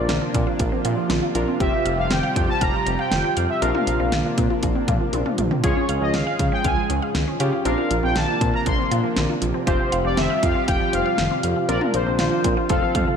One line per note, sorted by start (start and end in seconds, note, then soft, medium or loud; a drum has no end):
0.00 5.60 C3 medium
0.00 9.63 F3 medium
0.00 1.58 A#3 medium
0.00 1.32 D4 medium
0.00 1.58 D4 medium
0.00 1.32 F4 medium
0.00 9.63 F4 medium
0.00 1.32 A#4 medium
0.00 0.55 D5 loud
0.09 0.19 A#1 loud
0.09 0.17 F4 medium
0.09 snare loud
0.09 closed hi-hat medium
0.22 0.29 F3 medium
0.34 0.45 A#2 loud
0.34 0.42 C4 medium
0.34 kick loud
0.34 closed hi-hat medium
0.47 0.55 F4 medium
0.59 0.70 A#1 loud
0.59 0.67 F3 medium
0.59 kick loud
0.59 closed hi-hat medium
0.72 0.80 C4 medium
0.85 0.95 A#2 loud
0.85 0.92 F4 medium
0.85 closed hi-hat medium
0.98 1.05 F3 medium
1.10 1.20 A#1 loud
1.10 1.18 C4 medium
1.10 snare loud
1.10 closed hi-hat medium
1.23 1.30 F4 medium
1.35 1.45 A#1 loud
1.35 1.43 F3 medium
1.35 1.60 D4 medium
1.35 1.59 F4 medium
1.35 1.60 A#4 medium
1.35 closed hi-hat medium
1.48 1.55 C4 medium
1.60 1.71 F1 loud
1.60 1.68 F3 loud
1.60 3.60 G3 medium
1.60 3.58 C4 medium
1.60 3.58 F4 medium
1.60 3.58 G4 medium
1.60 3.60 G4 medium
1.60 1.99 E5 loud
1.60 kick loud
1.60 closed hi-hat medium
1.73 1.81 C4 medium
1.85 1.96 F1 medium
1.85 1.93 F5 medium
1.85 closed hi-hat medium
1.98 2.08 F1 loud
1.98 2.06 F3 medium
1.98 2.11 F5 medium
2.11 2.21 F1 loud
2.11 2.18 C4 medium
2.11 2.50 G5 loud
2.11 snare loud
2.11 closed hi-hat medium
2.23 2.31 F5 medium
2.36 2.46 F2 loud
2.36 2.44 F3 medium
2.36 kick loud
2.36 closed hi-hat medium
2.49 2.56 C4 medium
2.49 2.62 A5 loud
2.61 2.72 F1 loud
2.61 2.69 F5 loud
2.61 3.00 A#5 loud
2.61 kick medium
2.61 closed hi-hat medium
2.74 2.81 F3 medium
2.86 2.97 F1 loud
2.86 2.94 C4 medium
2.86 closed hi-hat medium
2.99 3.07 F5 medium
2.99 3.51 G5 loud
3.12 3.22 F1 loud
3.12 snare loud
3.12 closed hi-hat medium
3.24 3.32 C4 medium
3.37 3.47 F2 loud
3.37 3.45 F5 medium
3.37 closed hi-hat medium
3.49 3.57 F3 medium
3.49 3.62 E5 medium
3.62 3.72 A#1 loud
3.62 5.62 A#3 medium
3.62 3.70 C4 loud
3.62 5.62 D4 medium
3.62 5.60 D4 medium
3.62 5.60 F4 medium
3.62 5.60 A#4 medium
3.62 4.59 F5 medium
3.62 closed hi-hat medium
3.75 3.82 F4 medium
3.75 mid tom medium
3.87 3.97 A#1 loud
3.87 3.95 F3 medium
3.87 closed hi-hat medium
4.00 4.10 A#1 medium
4.00 4.08 C4 medium
4.12 4.23 A#1 loud
4.12 4.20 F4 medium
4.12 snare loud
4.12 closed hi-hat medium
4.25 4.33 F3 medium
4.38 4.48 A#2 loud
4.38 4.45 C4 medium
4.38 kick loud
4.38 closed hi-hat medium
4.50 4.58 F4 medium
4.63 4.73 A#1 loud
4.63 4.71 F3 medium
4.63 kick loud
4.63 closed hi-hat medium
4.75 4.83 C4 medium
4.88 4.98 A#2 loud
4.88 4.96 F4 medium
4.88 kick medium
4.88 closed hi-hat medium
4.88 mid tom medium
5.01 5.08 F3 medium
5.13 5.23 A#1 loud
5.13 5.21 C4 medium
5.13 closed hi-hat medium
5.13 high tom medium
5.26 5.34 F4 medium
5.26 mid tom medium
5.38 5.49 A#1 loud
5.38 5.46 F3 medium
5.38 closed hi-hat medium
5.38 mid tom loud
5.51 5.59 C4 medium
5.51 floor tom loud
5.64 5.74 C#2 loud
5.64 7.63 C#3 medium
5.64 5.71 F3 medium
5.64 7.63 G#3 medium
5.64 7.37 C#4 medium
5.64 7.37 F4 medium
5.64 7.63 G#4 medium
5.64 7.37 G#4 medium
5.64 6.03 C#5 medium
5.64 kick loud
5.64 closed hi-hat medium
5.76 5.84 C#4 medium
5.89 5.99 C#2 loud
5.89 5.97 F5 medium
5.89 closed hi-hat medium
6.01 6.12 C#2 medium
6.01 6.09 F3 medium
6.01 6.15 D#5 medium
6.14 6.24 C#2 loud
6.14 6.22 C#4 medium
6.14 6.53 F5 loud
6.14 snare loud
6.14 closed hi-hat medium
6.27 6.35 F5 medium
6.39 6.50 C#3 loud
6.39 6.47 F3 medium
6.39 kick loud
6.39 closed hi-hat medium
6.52 6.60 C#4 medium
6.52 6.65 G5 loud
6.64 6.75 C#2 loud
6.64 6.72 F5 loud
6.64 7.00 G#5 loud
6.64 kick loud
6.64 closed hi-hat medium
6.77 6.85 F3 medium
6.90 7.00 C#2 loud
6.90 6.97 C#4 medium
6.90 closed hi-hat medium
7.02 7.10 F5 medium
7.15 7.25 C#2 loud
7.15 snare loud
7.15 closed hi-hat medium
7.28 7.35 C#4 medium
7.40 7.50 C#3 loud
7.40 7.65 C#4 medium
7.40 7.64 F4 medium
7.40 7.65 G4 medium
7.40 7.48 F5 medium
7.40 closed hi-hat medium
7.53 7.60 F3 medium
7.65 7.76 A#1 loud
7.65 11.65 C3 medium
7.65 9.65 A#3 medium
7.65 7.73 C4 loud
7.65 9.65 D4 medium
7.65 9.63 D4 medium
7.65 9.63 F4 medium
7.65 9.63 A#4 medium
7.65 8.04 F5 medium
7.65 closed hi-hat medium
7.78 7.86 F4 medium
7.90 8.01 A#1 loud
7.90 7.98 F3 medium
7.90 closed hi-hat medium
8.03 8.14 A#1 loud
8.03 8.11 C4 medium
8.03 8.16 G5 medium
8.16 8.26 A#1 loud
8.16 8.23 F4 medium
8.16 8.55 A5 loud
8.16 snare loud
8.16 closed hi-hat medium
8.28 8.36 F3 medium
8.41 8.51 A#2 loud
8.41 8.49 C4 medium
8.41 kick loud
8.41 closed hi-hat medium
8.54 8.61 F4 medium
8.54 8.67 A#5 loud
8.66 8.77 A#1 loud
8.66 8.74 F3 medium
8.66 9.01 C6 loud
8.66 kick loud
8.66 closed hi-hat medium
8.79 8.86 C4 medium
8.91 9.02 A#2 loud
8.91 8.99 F4 medium
8.91 closed hi-hat medium
9.04 9.12 F3 medium
9.16 9.27 A#1 loud
9.16 9.24 C4 medium
9.16 snare loud
9.16 closed hi-hat medium
9.29 9.37 F4 medium
9.42 9.52 A#1 loud
9.42 9.49 F3 medium
9.42 closed hi-hat medium
9.54 9.62 C4 medium
9.67 9.77 F1 loud
9.67 9.75 F3 loud
9.67 11.67 F3 medium
9.67 11.67 G3 medium
9.67 11.65 C4 medium
9.67 11.67 F4 medium
9.67 11.65 F4 medium
9.67 11.67 G4 medium
9.67 11.65 G4 medium
9.67 10.06 C5 loud
9.67 kick loud
9.67 closed hi-hat medium
9.80 9.87 C4 medium
9.92 10.03 F1 loud
9.92 10.00 F5 medium
9.92 closed hi-hat medium
10.05 10.15 F1 loud
10.05 10.13 F3 medium
10.05 10.18 D5 loud
10.17 10.28 F1 loud
10.17 10.25 C4 medium
10.17 10.43 E5 loud
10.17 snare loud
10.17 closed hi-hat medium
10.30 10.38 F5 medium
10.43 10.53 F2 loud
10.43 10.50 F3 medium
10.43 10.69 F5 loud
10.43 kick loud
10.43 closed hi-hat medium
10.55 10.63 C4 medium
10.68 10.78 F1 loud
10.68 10.76 F5 loud
10.68 10.94 G5 loud
10.68 kick loud
10.68 closed hi-hat medium
10.80 10.88 F3 medium
10.93 11.03 F1 loud
10.93 11.01 C4 medium
10.93 11.71 F5 loud
10.93 closed hi-hat medium
11.06 11.13 F5 medium
11.18 11.29 F1 loud
11.18 snare loud
11.18 closed hi-hat medium
11.31 11.39 C4 medium
11.43 11.54 F2 loud
11.43 11.51 F5 medium
11.43 closed hi-hat medium
11.56 11.64 F3 medium
11.69 11.79 A#1 loud
11.69 13.17 C3 medium
11.69 13.17 F3 medium
11.69 12.69 A#3 medium
11.69 11.76 C4 loud
11.69 12.67 D4 medium
11.69 12.69 D4 medium
11.69 12.68 F4 medium
11.69 13.17 F4 medium
11.69 12.68 A#4 medium
11.69 11.80 D5 loud
11.69 closed hi-hat medium
11.81 11.89 F4 medium
11.81 mid tom medium
11.94 12.04 A#1 loud
11.94 12.02 F3 medium
11.94 12.18 C5 medium
11.94 closed hi-hat medium
12.07 12.17 A#1 loud
12.07 12.14 C4 medium
12.19 12.29 A#1 loud
12.19 12.27 F4 medium
12.19 12.66 C5 medium
12.19 snare loud
12.19 closed hi-hat medium
12.32 12.40 F3 medium
12.44 12.55 A#2 loud
12.44 12.52 C4 medium
12.44 kick loud
12.44 closed hi-hat medium
12.57 12.65 F4 medium
12.69 12.80 F1 loud
12.69 12.77 F3 medium
12.69 13.17 A3 medium
12.69 13.17 C4 medium
12.69 13.17 F4 medium
12.69 13.17 A4 medium
12.69 13.17 F5 loud
12.69 kick medium
12.69 closed hi-hat medium
12.82 12.90 C4 medium
12.95 13.05 F2 loud
12.95 13.03 F5 medium
12.95 kick medium
12.95 closed hi-hat medium
12.95 mid tom medium
13.07 13.15 F3 medium